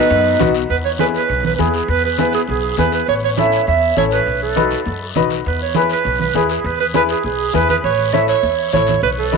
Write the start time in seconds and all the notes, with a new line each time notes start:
Already playing: B3 D#4 B4
0.10 F#2, long guiro
0.39 B1 B3 D#4 F#4, high conga, low conga, short guiro
0.54 short guiro
0.70 E2 B4, long guiro
0.85 C#5, high conga
0.99 B3 E4 G#4 B4, high conga, short guiro
1.14 B4, short guiro
1.29 B1, high conga, long guiro
1.44 B4, high conga
1.56 E2 B3 E4 G#4 B4, high conga, short guiro
1.74 G#4, short guiro
1.88 E2 B4, long guiro
2.04 B4, high conga
2.18 B3 E4 G#4 B4, high conga, short guiro
2.33 G#4, short guiro
2.48 B1 G#4, high conga, long guiro
2.77 E2 B3 E4 G#4 B4, high conga, short guiro
2.92 B4, short guiro
3.08 A1 C#5, long guiro
3.23 C#5, high conga
3.37 C#4 E4 A4 E5, high conga, short guiro
3.52 short guiro
3.67 E2 E5, high conga, long guiro
3.96 A1 C#4 E4 A4 C#5, high conga, short guiro
4.11 B4, short guiro
4.26 B1, long guiro
4.42 A4, high conga
4.56 D#4 F#4 B4, high conga, short guiro
4.71 short guiro
4.86 F#2, high conga, long guiro
5.15 B1 D#4 F#4 B4, high conga, short guiro
5.30 short guiro
5.45 E2 B4, long guiro
5.61 C#5, high conga
5.74 E4 G#4 B4, high conga, short guiro
5.90 B4, short guiro
6.04 B1, high conga, long guiro
6.20 B4, high conga
6.34 E2 E4 G#4 B4, high conga, short guiro
6.49 G#4, short guiro
6.64 E2 B4, long guiro
6.80 B4, high conga
6.94 E4 G#4 B4, high conga, short guiro
7.09 G#4, short guiro
7.23 B1 G#4, high conga, long guiro
7.53 E2 E4 G#4 B4, high conga, short guiro
7.69 B4, high conga, short guiro
7.84 A1 C#5, long guiro
7.99 high conga
8.13 E4 A4 C#5 E5, high conga, short guiro
8.28 C#5, short guiro
8.43 E2, high conga, long guiro
8.73 A1 E4 A4 C#5, high conga, short guiro
8.87 high conga, short guiro
9.02 B1 B4, long guiro
9.18 A4, high conga
9.31 D#4 F#4 B4, high conga, short guiro